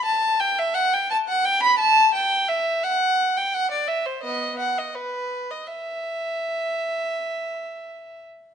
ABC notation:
X:1
M:4/4
L:1/16
Q:1/4=84
K:Em
V:1 name="Violin"
a2 g e f g a f g b a2 g2 e2 | f3 g f d e c [B,^d]2 f d B3 d | e12- e2 z2 |]